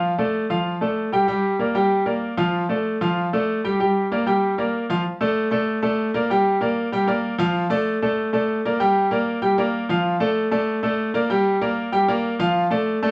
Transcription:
0.00 0.12 F3 medium
0.00 0.12 F4 medium
0.00 0.13 F5 medium
0.18 0.44 A3 medium
0.18 0.44 A4 medium
0.18 0.44 D5 medium
0.50 0.76 F3 medium
0.50 0.76 F4 medium
0.50 0.76 F5 medium
0.81 1.07 A3 medium
0.81 1.07 A4 medium
0.81 1.07 D5 medium
1.12 1.25 G3 medium
1.12 1.26 G4 medium
1.12 1.26 G5 medium
1.28 1.54 G3 medium
1.28 1.54 G4 medium
1.28 1.54 G5 medium
1.59 1.72 A#3 medium
1.59 1.72 A#4 medium
1.59 1.73 D5 medium
1.75 2.01 G3 medium
1.75 2.01 G4 medium
1.75 2.01 G5 medium
2.06 2.32 A#3 medium
2.06 2.32 A#4 medium
2.06 2.32 D5 medium
2.37 2.63 F3 medium
2.37 2.64 F4 medium
2.37 2.64 F5 medium
2.69 2.95 A3 medium
2.69 2.95 A4 medium
2.69 2.95 D5 medium
3.01 3.27 F3 medium
3.01 3.27 F4 medium
3.01 3.27 F5 medium
3.33 3.59 A3 medium
3.33 3.59 A4 medium
3.33 3.59 D5 medium
3.64 3.77 G3 medium
3.64 3.77 G4 medium
3.64 3.77 G5 medium
3.80 4.05 G3 medium
3.80 4.05 G4 medium
3.80 4.06 G5 medium
4.12 4.24 A#3 medium
4.12 4.24 A#4 medium
4.12 4.24 D5 medium
4.26 4.52 G3 medium
4.26 4.52 G4 medium
4.26 4.53 G5 medium
4.58 4.84 A#3 medium
4.58 4.84 A#4 medium
4.58 4.84 D5 medium
4.90 5.02 F3 medium
4.90 5.03 F4 medium
4.90 5.02 F5 medium
5.21 5.46 A3 medium
5.21 5.46 A4 medium
5.21 5.46 D5 medium
5.51 5.77 A3 medium
5.51 5.77 A4 medium
5.51 5.77 D5 medium
5.82 6.08 A3 medium
5.82 6.08 A4 medium
5.82 6.09 D5 medium
6.14 6.27 A#3 medium
6.14 6.27 A#4 medium
6.14 6.27 D5 medium
6.30 6.56 G3 medium
6.30 6.56 G4 medium
6.30 6.56 G5 medium
6.61 6.86 A#3 medium
6.61 6.87 A#4 medium
6.61 6.87 D5 medium
6.92 7.05 G3 medium
6.92 7.05 G4 medium
6.92 7.06 G5 medium
7.07 7.33 A#3 medium
7.07 7.33 A#4 medium
7.07 7.34 D5 medium
7.38 7.64 F3 loud
7.38 7.65 F4 medium
7.38 7.65 F5 loud
7.70 7.96 A3 medium
7.70 7.96 A4 medium
7.70 7.96 D5 medium
8.02 8.28 A3 medium
8.02 8.28 A4 medium
8.02 8.28 D5 medium
8.33 8.59 A3 medium
8.33 8.59 A4 medium
8.33 8.59 D5 medium
8.65 8.78 A#3 medium
8.65 8.78 A#4 medium
8.65 8.78 D5 medium
8.80 9.06 G3 medium
8.80 9.05 G4 medium
8.80 9.06 G5 medium
9.11 9.37 A#3 medium
9.11 9.37 A#4 medium
9.11 9.37 D5 medium
9.42 9.55 G3 medium
9.42 9.55 G4 medium
9.42 9.55 G5 medium
9.58 9.84 A#3 medium
9.58 9.84 A#4 medium
9.58 9.84 D5 medium
9.89 10.15 F3 medium
9.89 10.15 F4 medium
9.89 10.15 F5 medium
10.20 10.46 A3 medium
10.20 10.46 A4 medium
10.20 10.46 D5 medium
10.51 10.77 A3 medium
10.51 10.77 A4 medium
10.51 10.78 D5 medium
10.83 11.09 A3 medium
10.83 11.09 A4 medium
10.83 11.09 D5 medium
11.14 11.27 A#3 medium
11.14 11.27 A#4 medium
11.14 11.27 D5 medium
11.30 11.56 G3 medium
11.30 11.56 G4 medium
11.30 11.56 G5 medium
11.61 11.87 A#3 medium
11.61 11.87 A#4 medium
11.61 11.87 D5 medium
11.92 12.05 G3 medium
11.92 12.05 G4 medium
11.92 12.06 G5 medium
12.08 12.34 A#3 medium
12.08 12.34 A#4 medium
12.08 12.34 D5 medium
12.39 12.65 F3 medium
12.39 12.65 F4 loud
12.39 12.65 F5 loud
12.71 12.96 A3 medium
12.71 12.97 A4 medium
12.71 12.97 D5 medium
13.03 13.11 A3 medium
13.03 13.11 A4 medium
13.03 13.11 D5 medium

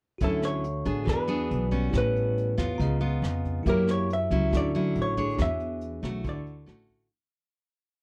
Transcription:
0.18 0.82 D2 medium
0.18 1.05 D3 medium
0.18 0.64 F#3 soft
0.18 0.65 C#4 medium
0.18 1.03 F#4 soft
0.18 1.05 A4 soft
0.18 kick medium
0.18 closed hi-hat soft
0.22 0.65 E4 medium
0.22 0.45 A4 medium
0.22 1.06 C#5 soft
0.22 1.08 E5 soft
0.42 1.09 C#5 medium
0.42 cross-stick medium
0.42 closed hi-hat soft
0.64 closed hi-hat soft
0.85 1.06 A1 medium
0.85 1.25 B3 medium
0.85 1.25 D4 medium
0.85 1.25 G#4 medium
0.85 kick soft
0.85 closed hi-hat soft
1.04 1.47 E2 medium
1.04 1.71 E3 medium
1.04 1.90 F#4 soft
1.04 1.91 G#4 soft
1.04 kick medium
1.04 cross-stick medium
1.04 closed hi-hat soft
1.08 1.92 B4 soft
1.08 1.96 B4 medium
1.08 1.93 D5 medium
1.28 1.68 B3 medium
1.28 1.68 D4 medium
1.28 1.68 G#4 medium
1.28 closed hi-hat soft
1.51 1.91 B1 medium
1.51 closed hi-hat soft
1.71 2.54 G3 medium
1.71 2.54 B3 medium
1.71 2.55 C#4 medium
1.71 kick soft
1.71 closed hi-hat soft
1.90 2.54 A1 loud
1.90 2.77 A2 soft
1.90 2.76 E4 soft
1.90 2.77 G4 soft
1.90 kick medium
1.90 cross-stick medium
1.90 closed hi-hat soft
1.94 2.78 B4 soft
1.94 3.42 B4 medium
1.94 2.79 C#5 medium
2.16 closed hi-hat soft
2.38 closed hi-hat soft
2.58 2.78 E2 medium
2.58 2.97 B3 medium
2.58 2.98 F4 medium
2.58 kick soft
2.58 cross-stick medium
2.58 closed hi-hat soft
2.75 3.62 F4 medium
2.75 3.63 A#5 medium
2.80 3.20 C#2 medium
2.80 3.64 C#3 medium
2.80 3.65 D#5 medium
2.80 kick medium
2.80 closed hi-hat soft
3.01 3.62 B3 medium
3.01 3.62 F4 medium
3.01 closed hi-hat soft
3.22 3.62 F2 medium
3.22 cross-stick medium
3.22 closed hi-hat soft
3.45 kick soft
3.45 closed hi-hat soft
3.63 4.26 F#2 medium
3.63 4.30 F#3 soft
3.63 4.09 A#3 medium
3.63 4.49 E4 soft
3.63 4.50 G4 soft
3.63 kick medium
3.63 closed hi-hat soft
3.67 4.09 E4 medium
3.67 4.09 G4 medium
3.67 4.51 A#4 soft
3.67 3.90 A#4 medium
3.67 4.52 C#5 medium
3.87 4.11 C#5 medium
3.87 cross-stick medium
3.87 closed hi-hat soft
4.10 4.55 E5 medium
4.10 closed hi-hat soft
4.31 4.50 C#2 medium
4.31 4.70 F#3 medium
4.31 4.71 C#4 medium
4.31 4.71 E4 medium
4.31 kick soft
4.31 closed hi-hat soft
4.50 4.92 D2 medium
4.50 5.36 D3 medium
4.50 5.35 E4 soft
4.50 5.36 F#4 soft
4.50 5.37 A4 soft
4.50 kick medium
4.50 cross-stick medium
4.50 closed hi-hat soft
4.55 4.99 D5 medium
4.55 5.38 C#6 medium
4.74 5.14 F#3 medium
4.74 5.14 C#4 medium
4.74 5.14 E4 medium
4.74 closed hi-hat soft
4.95 5.35 A1 medium
4.95 closed hi-hat soft
5.02 5.41 C#5 medium
5.17 5.99 D4 medium
5.17 5.99 G#4 medium
5.17 6.00 C#5 medium
5.17 kick soft
5.17 closed hi-hat soft
5.36 5.99 E2 loud
5.36 6.21 D4 soft
5.36 6.22 F#4 soft
5.36 6.23 G#4 soft
5.36 kick medium
5.36 cross-stick medium
5.36 closed hi-hat soft
5.40 6.23 E3 soft
5.40 6.24 C#5 medium
5.40 6.28 E5 medium
5.60 closed hi-hat soft
5.81 closed hi-hat soft
6.03 6.23 B1 medium
6.03 6.63 A3 medium
6.03 6.64 F#4 medium
6.03 kick soft
6.03 cross-stick medium
6.03 closed hi-hat soft
6.21 6.64 D2 medium
6.21 7.08 D3 medium
6.21 7.07 E4 soft
6.21 7.08 F#4 soft
6.21 7.09 A4 soft
6.21 kick medium
6.21 closed hi-hat soft
6.27 6.87 D5 medium
6.27 7.10 C#6 medium
6.46 closed hi-hat soft
6.66 7.07 A1 medium
6.66 7.06 A3 soft
6.66 7.06 C#4 medium
6.66 7.06 F#4 medium
6.66 cross-stick medium
6.66 closed hi-hat soft
6.89 kick soft
6.89 closed hi-hat soft

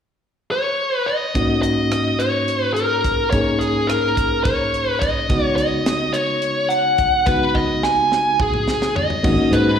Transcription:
0.51 0.96 C#5 medium
0.96 1.09 B4 medium
1.06 1.59 D#5 medium
1.35 3.28 G#2 medium
1.35 3.29 A#3 medium
1.35 3.29 C#4 medium
1.35 3.29 D#4 medium
1.35 3.29 F#4 medium
1.35 kick medium
1.35 closed hi-hat medium
1.62 2.21 D#5 medium
1.62 closed hi-hat medium
1.92 cross-stick medium
1.92 closed hi-hat medium
2.19 2.73 C#5 medium
2.19 closed hi-hat soft
2.48 closed hi-hat medium
2.74 3.30 A#4 medium
2.74 closed hi-hat soft
3.04 kick medium
3.04 closed hi-hat soft
3.30 5.25 G#2 soft
3.30 5.26 A#3 soft
3.30 5.26 C#4 soft
3.30 5.26 D#4 soft
3.30 5.27 G#4 medium
3.30 3.57 C#5 medium
3.30 kick medium
3.30 closed hi-hat medium
3.59 3.89 G#4 medium
3.59 closed hi-hat medium
3.87 4.43 A#4 medium
3.87 cross-stick medium
3.87 closed hi-hat medium
4.17 kick medium
4.17 closed hi-hat soft
4.44 4.90 C#5 medium
4.44 kick medium
4.44 closed hi-hat medium
4.74 closed hi-hat soft
4.90 5.02 B4 medium
4.99 5.55 D#5 medium
4.99 kick medium
4.99 closed hi-hat soft
5.29 7.22 C#3 medium
5.29 7.23 G#3 soft
5.29 7.23 B3 medium
5.29 7.23 D#4 soft
5.29 7.23 F#4 medium
5.29 kick medium
5.29 closed hi-hat soft
5.56 6.15 D#5 medium
5.56 closed hi-hat soft
5.86 snare medium
5.86 closed hi-hat medium
6.13 6.71 C#5 medium
6.13 closed hi-hat medium
6.42 closed hi-hat medium
6.69 7.28 F#5 medium
6.69 closed hi-hat medium
6.98 kick medium
6.98 closed hi-hat medium
7.26 9.20 C#3 soft
7.26 9.20 G#3 medium
7.26 9.20 B3 soft
7.26 9.20 D#4 medium
7.26 9.20 F#4 medium
7.26 7.55 B4 medium
7.26 kick medium
7.26 closed hi-hat medium
7.55 7.84 D#5 medium
7.55 kick soft
7.83 8.64 G#5 medium
7.83 snare soft
8.12 snare soft
8.39 8.93 G#4 medium
8.39 kick medium
8.39 mid tom medium
8.54 mid tom medium
8.68 snare medium
8.82 snare medium
8.96 9.54 D#5 medium
8.96 floor tom medium
9.10 floor tom medium
9.23 9.37 G#1 medium
9.23 9.68 A#3 medium
9.23 9.69 C#4 medium
9.23 9.69 D#4 medium
9.23 9.69 F#4 medium
9.23 kick medium
9.23 crash medium
9.51 9.76 G#2 medium
9.51 9.78 B4 medium
9.51 closed hi-hat medium

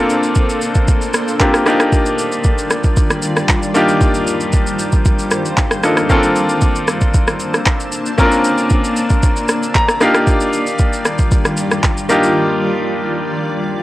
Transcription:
0.00 1.37 A#3 medium
0.00 1.62 A#3 medium
0.00 1.37 C4 medium
0.00 1.37 D4 medium
0.00 1.62 D4 medium
0.00 1.38 F4 medium
0.00 1.38 A4 medium
0.00 1.62 A4 medium
0.00 1.62 C5 medium
0.10 shaker medium
0.23 shaker medium
0.35 kick loud
0.35 shaker medium
0.49 shaker medium
0.62 shaker medium
0.75 kick medium
0.75 shaker soft
0.88 kick loud
0.88 shaker medium
1.01 shaker soft
1.14 cross-stick medium
1.14 shaker medium
1.28 shaker soft
1.40 1.64 A#3 medium
1.40 1.66 C4 medium
1.40 1.65 D4 medium
1.40 1.66 F4 medium
1.40 1.66 G4 medium
1.40 kick medium
1.40 clap medium
1.40 shaker medium
1.54 cross-stick loud
1.54 shaker medium
1.66 6.06 D#3 medium
1.66 6.06 G3 medium
1.66 3.71 A#3 medium
1.66 3.71 D4 medium
1.66 3.71 D#4 medium
1.66 6.06 F4 medium
1.66 3.71 F4 medium
1.66 3.72 G4 medium
1.66 3.73 D5 medium
1.66 cross-stick loud
1.66 shaker medium
1.80 cross-stick loud
1.80 shaker medium
1.92 kick loud
1.92 shaker medium
2.06 shaker medium
2.19 shaker loud
2.32 shaker medium
2.44 kick loud
2.44 shaker medium
2.58 shaker medium
2.70 cross-stick medium
2.70 shaker medium
2.84 kick medium
2.84 shaker medium
2.97 kick loud
2.97 shaker medium
3.10 cross-stick medium
3.10 shaker medium
3.22 shaker loud
3.37 cross-stick medium
3.37 shaker medium
3.49 kick loud
3.49 clap medium
3.49 shaker medium
3.63 shaker medium
3.74 5.79 A#3 medium
3.74 5.80 D4 medium
3.74 5.80 D#4 medium
3.74 5.80 F4 medium
3.74 5.80 G4 medium
3.74 8.15 C5 medium
3.74 shaker medium
3.89 shaker medium
4.01 kick loud
4.01 shaker medium
4.14 shaker medium
4.27 shaker medium
4.40 shaker medium
4.53 kick medium
4.53 shaker medium
4.67 shaker medium
4.79 shaker medium
4.92 kick medium
4.92 shaker medium
5.05 kick loud
5.05 shaker medium
5.19 shaker medium
5.31 cross-stick medium
5.31 shaker loud
5.45 shaker medium
5.57 kick medium
5.57 clap medium
5.57 shaker medium
5.71 cross-stick loud
5.71 shaker medium
5.83 6.07 A#3 medium
5.83 6.10 D4 soft
5.83 6.10 D#4 soft
5.83 6.09 F4 soft
5.83 6.10 A4 medium
5.83 cross-stick loud
5.83 shaker medium
5.97 cross-stick loud
5.97 shaker medium
6.09 8.14 A#3 medium
6.09 9.97 A#3 medium
6.09 8.14 C4 medium
6.09 6.16 C#4 medium
6.09 9.97 D4 medium
6.09 8.15 F4 medium
6.09 8.15 A4 medium
6.09 9.97 A5 medium
6.09 kick loud
6.09 shaker medium
6.16 8.18 D4 medium
6.23 shaker medium
6.36 shaker loud
6.49 shaker medium
6.61 kick loud
6.61 shaker medium
6.76 shaker medium
6.88 cross-stick medium
6.88 shaker medium
7.01 kick medium
7.01 shaker soft
7.14 kick loud
7.14 shaker medium
7.27 cross-stick medium
7.27 shaker medium
7.40 shaker loud
7.54 cross-stick medium
7.54 shaker medium
7.66 kick loud
7.66 clap medium
7.66 shaker medium
7.80 shaker medium
7.92 shaker medium
8.06 shaker medium
8.18 9.97 A#3 medium
8.18 9.97 C4 medium
8.18 8.25 C#4 medium
8.18 9.98 F4 medium
8.18 9.98 A#4 medium
8.18 12.06 D5 medium
8.18 kick loud
8.18 shaker medium
8.25 9.99 D4 medium
8.32 shaker medium
8.44 shaker loud
8.58 shaker medium
8.70 kick medium
8.70 shaker medium
8.84 shaker medium
8.96 shaker medium
9.10 kick medium
9.10 shaker medium
9.23 kick loud
9.23 shaker medium
9.36 shaker medium
9.48 cross-stick medium
9.48 shaker loud
9.63 shaker medium
9.75 9.99 A#5 medium
9.75 kick loud
9.75 clap medium
9.75 shaker medium
9.89 cross-stick loud
9.89 shaker medium
10.00 13.83 D#3 medium
10.00 13.83 G3 medium
10.00 12.05 A#3 medium
10.00 12.06 D4 medium
10.00 12.06 D#4 medium
10.00 13.83 F4 medium
10.00 12.06 F4 medium
10.00 12.07 G4 medium
10.00 10.26 F5 medium
10.00 cross-stick loud
10.00 shaker medium
10.15 cross-stick loud
10.15 shaker medium
10.27 kick loud
10.27 shaker medium
10.40 shaker medium
10.53 shaker loud
10.67 shaker medium
10.79 kick loud
10.79 shaker medium
10.93 shaker medium
11.05 cross-stick medium
11.05 shaker medium
11.18 kick medium
11.18 shaker medium
11.31 kick loud
11.31 shaker medium
11.45 cross-stick medium
11.45 shaker soft
11.57 shaker loud
11.71 cross-stick medium
11.71 shaker medium
11.83 kick medium
11.83 clap medium
11.83 shaker medium
11.98 shaker medium
12.09 13.83 A#3 medium
12.09 13.83 D4 medium
12.09 13.83 D#4 medium
12.09 13.83 F4 medium
12.09 13.83 G4 medium
12.09 13.83 D5 medium
12.09 shaker medium
12.23 shaker medium

